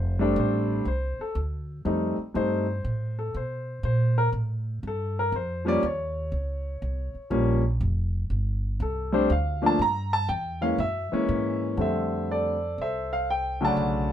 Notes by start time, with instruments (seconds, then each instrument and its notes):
Already playing: upright bass F1, grand piano C5
0.19 grand piano G3 A3 C4 D4 A4
0.36 upright bass A1, grand piano C5
0.85 upright bass C2, grand piano C5
1.19 grand piano A4, muted upright bass stroke
1.35 upright bass D2
1.85 upright bass F2, grand piano G3 A3 C4 D#4
2.18 muted upright bass stroke
2.34 upright bass G2, grand piano G3 A3 C4 D#4 C5
2.84 upright bass A2
3.19 grand piano A4
3.34 upright bass B2, grand piano C5
3.83 upright bass A#2, grand piano C5
4.18 grand piano A#4
4.32 upright bass A2
4.83 upright bass G2
4.87 grand piano A4
5.19 grand piano A#4
5.32 upright bass F2, grand piano C5
5.65 grand piano F3 G3 A#3 C#4 D5
5.83 upright bass D#2, grand piano C#5
6.32 upright bass C#2
6.82 upright bass C2
7.15 muted upright bass stroke
7.30 upright bass A#1, grand piano F3 G3 A#3 C#4
7.81 upright bass F1
8.30 upright bass G1
8.80 upright bass C2, grand piano A4
9.12 grand piano G3 A3 C4 D4 C5
9.30 upright bass D2, grand piano F5
9.62 grand piano F3 A3 A#3 D4
9.66 grand piano A5
9.79 upright bass G2, grand piano A#5
10.13 grand piano A5
10.29 upright bass E2, grand piano G5
10.61 grand piano E3 G#3 A#3 C#4 F5
10.78 upright bass F#2, grand piano E5
11.12 grand piano E3 G#3 A#3 C#4, muted upright bass stroke
11.29 upright bass G#2
11.77 upright bass F2, grand piano D3 G3 A3 C4 A4 C5 E5
12.31 grand piano A4 D5
12.78 upright bass C2, grand piano A4 C5 E5
13.13 grand piano F5
13.30 grand piano G5
13.61 grand piano C#3 D3 F#3 A3 A5
13.66 grand piano D5 F#5
13.77 upright bass B1